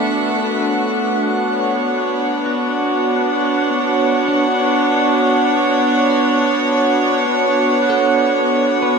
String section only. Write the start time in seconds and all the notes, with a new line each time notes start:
Already playing: A3 B3 D4 E5 F#5
0.00 F#4
1.18 D4
1.50 C#5